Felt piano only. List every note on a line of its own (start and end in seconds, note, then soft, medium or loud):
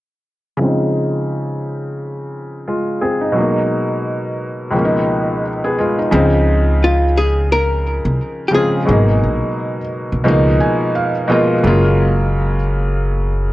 0.57 3.30 C#3 medium
0.57 3.31 F3 medium
0.61 2.63 G#3 medium
0.61 2.64 C4 medium
0.61 2.65 D#4 medium
2.68 3.00 G#3 medium
2.68 3.00 F4 medium
3.02 3.21 C4 medium
3.02 3.20 G#4 medium
3.21 3.39 D#4 medium
3.32 4.69 B2 medium
3.32 4.70 F#3 medium
3.32 4.71 G#3 medium
3.38 4.72 A#3 medium
3.38 4.73 D#4 medium
4.71 6.07 C#2 medium
4.71 6.08 B2 medium
4.71 6.09 F3 medium
4.75 5.42 G#3 medium
4.75 5.43 A#3 medium
4.75 4.84 C#4 medium
4.85 5.47 D#4 medium
5.64 5.78 B3 medium
5.64 5.77 G#4 medium
5.78 5.97 G#3 medium
5.78 5.97 F4 medium
5.99 6.14 D#4 medium
6.11 7.03 C#3 medium
6.11 7.04 F3 medium
6.11 7.04 G#3 medium
6.11 7.05 C4 medium
6.11 7.05 D#4 medium
8.51 8.76 C#3 medium
8.51 8.77 F3 medium
8.51 8.77 G#3 medium
8.51 8.78 C4 medium
8.55 8.78 F4 medium
8.85 9.78 B2 medium
8.85 9.79 F#3 medium
8.85 9.79 G#3 medium
8.85 9.80 A#3 medium
8.90 9.80 D#4 medium
10.24 11.10 B2 medium
10.24 11.10 F3 medium
10.24 11.10 G#3 medium
10.24 11.11 A#3 medium
10.28 11.12 D#4 loud
10.60 10.92 G#5 medium
10.95 11.27 F5 medium
11.28 11.53 B2 medium
11.28 11.53 F3 medium
11.28 11.54 G#3 medium
11.28 11.54 A#3 medium
11.28 11.61 D#5 medium
11.32 11.55 F4 medium
11.63 12.55 C#3 medium
11.63 12.56 F#3 medium
11.63 12.56 G#3 medium
11.63 12.57 A#3 medium
11.63 12.57 F4 medium